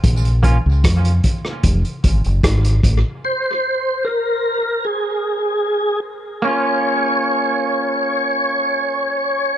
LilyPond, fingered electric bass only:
\new Staff \with { instrumentName = "Fingered electric bass" } { \clef bass \time 4/4 \key bes \minor \tempo 4 = 75 bes,,8. des,16 f,8 r8 f,,16 r16 aes,,16 ges,,16 aes,,8 a,,16 r16 | r1 | r1 | }